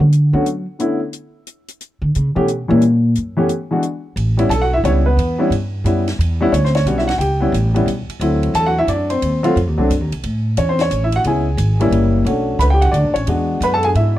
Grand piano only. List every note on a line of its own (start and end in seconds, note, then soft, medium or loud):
0.33 0.44 D3 medium
0.33 0.44 A3 medium
0.33 0.44 B3 medium
0.33 0.45 C#4 medium
0.33 0.45 F#4 medium
0.79 0.98 D3 medium
0.79 0.99 A3 soft
0.79 0.99 B3 medium
0.79 0.99 C#4 soft
0.79 0.99 E4 medium
2.35 2.46 E3 medium
2.35 2.47 A3 medium
2.35 2.47 B3 medium
2.35 2.47 C#4 medium
2.35 2.47 G4 medium
2.68 2.80 E3 medium
2.68 2.80 G3 medium
2.68 2.80 A#3 medium
2.68 2.80 C#4 medium
2.68 2.80 E4 medium
3.37 3.48 E3 medium
3.37 3.48 A3 medium
3.37 3.48 B3 medium
3.37 3.48 C#4 medium
3.37 3.48 G4 medium
3.71 3.81 E3 medium
3.71 3.82 G#3 medium
3.71 3.82 B3 medium
3.71 3.82 D4 medium
3.71 3.82 F#4 medium
4.37 4.48 G3 medium
4.37 4.49 B3 medium
4.37 4.49 C#4 medium
4.37 4.49 E4 medium
4.50 4.62 A4 medium
4.50 4.60 A5 medium
4.62 4.73 F#4 medium
4.62 4.72 F#5 loud
4.73 4.80 E4 medium
4.73 4.78 E5 medium
4.84 5.03 G3 medium
4.84 5.03 B3 medium
4.84 5.04 C#4 medium
4.84 5.04 E4 medium
4.84 4.90 C#5 medium
5.06 5.37 B3 medium
5.06 5.37 B4 medium
5.38 5.50 G3 medium
5.38 5.50 B3 medium
5.38 5.50 C#4 medium
5.38 5.50 E4 medium
5.85 6.04 G3 medium
5.85 6.04 B3 medium
5.85 6.05 C#4 medium
5.85 6.05 E4 medium
6.41 6.51 G3 medium
6.41 6.52 B3 medium
6.41 6.52 C#4 medium
6.41 6.52 E4 loud
6.53 6.64 C#4 medium
6.53 6.64 C#5 medium
6.65 6.71 C4 medium
6.65 6.69 C5 medium
6.75 6.86 C#4 medium
6.75 6.98 C#5 medium
6.86 7.05 G3 medium
6.86 7.06 B3 medium
6.86 7.06 C#4 medium
6.86 7.06 F#4 medium
6.98 7.04 E4 medium
6.98 7.03 E5 medium
7.08 7.14 F#4 medium
7.08 7.13 F#5 loud
7.18 7.83 G4 medium
7.18 7.82 G5 medium
7.40 7.52 G3 medium
7.40 7.52 B3 medium
7.40 7.52 C#4 medium
7.40 7.52 E4 medium
7.74 7.86 G3 medium
7.74 7.86 B3 medium
7.74 7.86 C#4 medium
7.74 7.86 E4 medium
8.21 9.15 F#3 medium
8.21 9.15 A3 medium
8.21 9.11 C4 medium
8.21 8.78 E4 medium
8.55 8.66 A4 medium
8.55 8.67 A5 loud
8.66 8.77 F#4 medium
8.66 8.77 F#5 loud
8.79 8.89 E4 medium
8.79 8.88 E5 loud
8.89 9.10 D4 medium
8.89 9.11 D5 medium
9.10 9.42 C4 medium
9.10 9.41 C5 medium
9.43 9.54 F#3 medium
9.43 9.55 A3 medium
9.43 9.55 C4 medium
9.43 9.55 F4 medium
9.78 9.88 F#3 medium
9.78 9.89 A3 medium
9.78 9.89 C4 medium
9.78 9.89 D4 medium
10.58 10.69 C#4 medium
10.58 10.68 C#5 medium
10.69 10.80 C4 medium
10.69 10.80 C5 medium
10.81 11.02 C#4 medium
10.81 11.04 C#5 medium
11.04 11.14 E4 medium
11.04 11.14 E5 medium
11.16 11.21 F#4 medium
11.16 11.20 F#5 loud
11.25 11.44 G#3 medium
11.25 11.45 B3 medium
11.25 11.45 C#4 medium
11.25 11.45 E4 medium
11.25 11.90 G#4 medium
11.25 11.90 G#5 medium
11.80 12.24 G3 medium
11.80 12.24 A#3 medium
11.80 12.24 C#4 medium
11.80 12.24 E4 medium
12.25 13.20 A3 medium
12.25 13.15 C#4 medium
12.25 12.94 D4 medium
12.25 12.83 F#4 medium
12.59 12.66 B4 medium
12.59 12.64 B5 medium
12.70 12.83 G4 medium
12.70 12.82 G5 medium
12.81 12.94 F#4 medium
12.81 12.94 F#5 medium
12.92 13.15 D4 medium
12.92 13.15 D5 medium
13.14 13.27 C#4 medium
13.14 13.26 C#5 medium
13.28 14.19 G#3 medium
13.28 14.19 B3 medium
13.28 14.17 D4 medium
13.28 14.19 F#4 medium
13.63 13.73 B4 medium
13.63 13.74 B5 medium
13.74 13.84 A4 medium
13.74 13.85 A5 loud
13.84 13.90 G#4 medium
13.84 13.89 G#5 loud
13.96 14.17 E4 medium
13.96 14.18 E5 medium